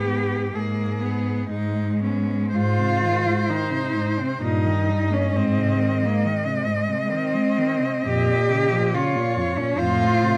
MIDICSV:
0, 0, Header, 1, 5, 480
1, 0, Start_track
1, 0, Key_signature, -4, "major"
1, 0, Tempo, 949367
1, 754, Tempo, 1056338
1, 1234, Time_signature, 3, 2, 24, 8
1, 1234, Tempo, 934579
1, 2194, Tempo, 914634
1, 3154, Tempo, 864553
1, 3634, Tempo, 953895
1, 4114, Tempo, 864553
1, 5397, End_track
2, 0, Start_track
2, 0, Title_t, "Cello"
2, 0, Program_c, 0, 42
2, 0, Note_on_c, 0, 59, 46
2, 217, Note_off_c, 0, 59, 0
2, 272, Note_on_c, 0, 58, 46
2, 512, Note_on_c, 0, 59, 42
2, 520, Note_off_c, 0, 58, 0
2, 753, Note_off_c, 0, 59, 0
2, 756, Note_on_c, 0, 63, 53
2, 989, Note_off_c, 0, 63, 0
2, 997, Note_on_c, 0, 61, 44
2, 1231, Note_off_c, 0, 61, 0
2, 1240, Note_on_c, 0, 72, 52
2, 2190, Note_on_c, 0, 75, 57
2, 2198, Note_off_c, 0, 72, 0
2, 4598, Note_on_c, 0, 73, 51
2, 4607, Note_off_c, 0, 75, 0
2, 5069, Note_on_c, 0, 72, 61
2, 5078, Note_off_c, 0, 73, 0
2, 5397, Note_off_c, 0, 72, 0
2, 5397, End_track
3, 0, Start_track
3, 0, Title_t, "Cello"
3, 0, Program_c, 1, 42
3, 0, Note_on_c, 1, 67, 69
3, 277, Note_on_c, 1, 68, 47
3, 285, Note_off_c, 1, 67, 0
3, 755, Note_off_c, 1, 68, 0
3, 758, Note_on_c, 1, 56, 60
3, 1235, Note_on_c, 1, 65, 85
3, 1242, Note_off_c, 1, 56, 0
3, 1717, Note_on_c, 1, 63, 59
3, 1725, Note_off_c, 1, 65, 0
3, 2079, Note_on_c, 1, 60, 60
3, 2087, Note_off_c, 1, 63, 0
3, 2189, Note_off_c, 1, 60, 0
3, 2192, Note_on_c, 1, 63, 73
3, 2568, Note_on_c, 1, 61, 67
3, 2576, Note_off_c, 1, 63, 0
3, 2684, Note_on_c, 1, 60, 70
3, 2692, Note_off_c, 1, 61, 0
3, 3050, Note_on_c, 1, 58, 62
3, 3058, Note_off_c, 1, 60, 0
3, 3154, Note_on_c, 1, 56, 61
3, 3163, Note_off_c, 1, 58, 0
3, 3630, Note_on_c, 1, 60, 77
3, 3638, Note_off_c, 1, 56, 0
3, 4112, Note_off_c, 1, 60, 0
3, 4114, Note_on_c, 1, 67, 89
3, 4599, Note_on_c, 1, 65, 67
3, 4608, Note_off_c, 1, 67, 0
3, 4956, Note_on_c, 1, 61, 76
3, 4964, Note_off_c, 1, 65, 0
3, 5069, Note_on_c, 1, 65, 87
3, 5077, Note_off_c, 1, 61, 0
3, 5397, Note_off_c, 1, 65, 0
3, 5397, End_track
4, 0, Start_track
4, 0, Title_t, "Cello"
4, 0, Program_c, 2, 42
4, 31, Note_on_c, 2, 59, 30
4, 274, Note_on_c, 2, 56, 36
4, 282, Note_off_c, 2, 59, 0
4, 510, Note_on_c, 2, 59, 36
4, 517, Note_off_c, 2, 56, 0
4, 748, Note_off_c, 2, 59, 0
4, 751, Note_on_c, 2, 56, 37
4, 992, Note_on_c, 2, 59, 37
4, 999, Note_off_c, 2, 56, 0
4, 1231, Note_off_c, 2, 59, 0
4, 1233, Note_on_c, 2, 44, 53
4, 1359, Note_on_c, 2, 48, 50
4, 1367, Note_off_c, 2, 44, 0
4, 1480, Note_on_c, 2, 51, 44
4, 1487, Note_off_c, 2, 48, 0
4, 1597, Note_on_c, 2, 56, 45
4, 1605, Note_off_c, 2, 51, 0
4, 1716, Note_on_c, 2, 51, 51
4, 1724, Note_off_c, 2, 56, 0
4, 1831, Note_on_c, 2, 48, 44
4, 1839, Note_off_c, 2, 51, 0
4, 1954, Note_on_c, 2, 44, 46
4, 1962, Note_off_c, 2, 48, 0
4, 2074, Note_on_c, 2, 48, 50
4, 2081, Note_off_c, 2, 44, 0
4, 2189, Note_off_c, 2, 48, 0
4, 2192, Note_on_c, 2, 46, 52
4, 2315, Note_on_c, 2, 51, 46
4, 2323, Note_off_c, 2, 46, 0
4, 2434, Note_on_c, 2, 55, 47
4, 2442, Note_off_c, 2, 51, 0
4, 2556, Note_on_c, 2, 58, 40
4, 2564, Note_off_c, 2, 55, 0
4, 2674, Note_off_c, 2, 58, 0
4, 2677, Note_on_c, 2, 44, 49
4, 2799, Note_on_c, 2, 48, 49
4, 2807, Note_off_c, 2, 44, 0
4, 2916, Note_on_c, 2, 51, 44
4, 2924, Note_off_c, 2, 48, 0
4, 3036, Note_on_c, 2, 56, 49
4, 3044, Note_off_c, 2, 51, 0
4, 3154, Note_on_c, 2, 51, 53
4, 3162, Note_off_c, 2, 56, 0
4, 3273, Note_on_c, 2, 48, 53
4, 3281, Note_off_c, 2, 51, 0
4, 3391, Note_on_c, 2, 44, 46
4, 3400, Note_off_c, 2, 48, 0
4, 3507, Note_on_c, 2, 48, 48
4, 3515, Note_off_c, 2, 44, 0
4, 3631, Note_on_c, 2, 51, 53
4, 3639, Note_off_c, 2, 48, 0
4, 3747, Note_on_c, 2, 56, 49
4, 3755, Note_off_c, 2, 51, 0
4, 3866, Note_on_c, 2, 51, 49
4, 3874, Note_off_c, 2, 56, 0
4, 3988, Note_on_c, 2, 48, 41
4, 3995, Note_off_c, 2, 51, 0
4, 4105, Note_off_c, 2, 48, 0
4, 4108, Note_on_c, 2, 41, 53
4, 4226, Note_on_c, 2, 46, 48
4, 4235, Note_off_c, 2, 41, 0
4, 4355, Note_on_c, 2, 49, 50
4, 4363, Note_off_c, 2, 46, 0
4, 4474, Note_on_c, 2, 53, 55
4, 4482, Note_off_c, 2, 49, 0
4, 4597, Note_on_c, 2, 49, 62
4, 4605, Note_off_c, 2, 53, 0
4, 4720, Note_on_c, 2, 46, 59
4, 4728, Note_off_c, 2, 49, 0
4, 4832, Note_on_c, 2, 41, 53
4, 4840, Note_off_c, 2, 46, 0
4, 4952, Note_on_c, 2, 46, 57
4, 4961, Note_off_c, 2, 41, 0
4, 5068, Note_off_c, 2, 46, 0
4, 5072, Note_on_c, 2, 41, 56
4, 5192, Note_on_c, 2, 45, 52
4, 5201, Note_off_c, 2, 41, 0
4, 5314, Note_on_c, 2, 48, 49
4, 5322, Note_off_c, 2, 45, 0
4, 5397, Note_off_c, 2, 48, 0
4, 5397, End_track
5, 0, Start_track
5, 0, Title_t, "Cello"
5, 0, Program_c, 3, 42
5, 0, Note_on_c, 3, 44, 46
5, 219, Note_off_c, 3, 44, 0
5, 275, Note_on_c, 3, 44, 45
5, 696, Note_off_c, 3, 44, 0
5, 753, Note_on_c, 3, 44, 43
5, 1179, Note_off_c, 3, 44, 0
5, 1234, Note_on_c, 3, 44, 57
5, 1638, Note_off_c, 3, 44, 0
5, 2189, Note_on_c, 3, 43, 59
5, 2594, Note_off_c, 3, 43, 0
5, 2674, Note_on_c, 3, 44, 65
5, 3074, Note_off_c, 3, 44, 0
5, 4111, Note_on_c, 3, 46, 67
5, 4521, Note_off_c, 3, 46, 0
5, 5072, Note_on_c, 3, 45, 61
5, 5397, Note_off_c, 3, 45, 0
5, 5397, End_track
0, 0, End_of_file